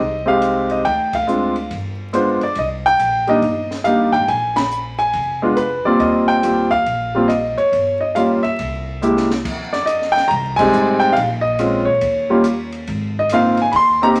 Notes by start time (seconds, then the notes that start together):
Already playing: D#5
0.00 C2
0.26 G#3 C4 D#4 G4 F5
0.42 hi-hat pedal, ride
0.70 D#5, ride
0.85 D2 G5, kick, ride
1.13 F5, kick, ride
1.27 G#3 C4 D4 F4, hi-hat pedal
1.56 ride
1.71 G1, kick, ride
2.13 G#3 B3 D4 F4 C5, hi-hat pedal, ride
2.41 D5, muted upright bass stroke, ride
2.55 C2 D#5, kick, ride
2.86 G5
2.98 A#1, hi-hat pedal, ride
3.27 G3 A#3 D4 D#4 D#5, ride
3.42 G1, kick, ride
3.71 snare
3.84 G3 A#3 D4 D#4 F5, hi-hat pedal, ride
4.12 G#1 G5, ride
4.28 A#1 G#5, kick, ride
4.56 B5, snare, ride
4.71 hi-hat pedal
4.99 G#5, ride
5.13 F1, kick, ride
5.42 G#3 B3 D4 F4
5.56 B4, hi-hat pedal, ride
5.84 G3 A#3 C4 F4 D5, muted upright bass stroke
5.99 D#2 D#5, kick, ride
6.28 G5
6.43 G3 A#3 C4 F4, hi-hat pedal, ride
6.71 F5, kick, ride
6.86 A#1, kick, ride
7.15 G3 A#3 C4 F4
7.28 D#5, hi-hat pedal, ride
7.57 C#5, muted upright bass stroke, ride
7.72 G1, kick, ride
8.01 D#5
8.15 G3 A#3 C#4 F4 F5, hi-hat pedal, ride
8.43 E5, muted upright bass stroke, ride
8.59 C2, kick, ride
9.02 G#3 A#3 E4 G4, hi-hat pedal
9.17 snare
9.31 snare
9.45 F2, kick, crash
9.73 D5, snare
9.86 D#5, hi-hat pedal, ride
10.02 snare
10.12 G5, muted upright bass stroke, ride
10.17 snare
10.28 C2 A#5, kick, ride
10.56 G3 G#3 C4 D#4 G#5, kick, crash
10.73 A1, hi-hat pedal
11.00 G5, ride
11.13 A#1 F5, kick, ride
11.41 D#5
11.59 G#3 C4 C#4 F4, hi-hat pedal, ride
11.85 A#2 C#5
12.01 D#2, kick, ride
12.30 G3 A#3 C#4 F4
12.44 hi-hat pedal, ride
12.72 ride
12.87 G#1, kick, ride
13.19 D#5
13.29 A#3 C4 D#4 F4, hi-hat pedal, ride
13.34 F5
13.57 ride
13.62 G#5
13.72 D#2 B5, kick, ride
13.76 C6
14.02 A#3 C4 D#4 G4 A#5
14.15 hi-hat pedal, ride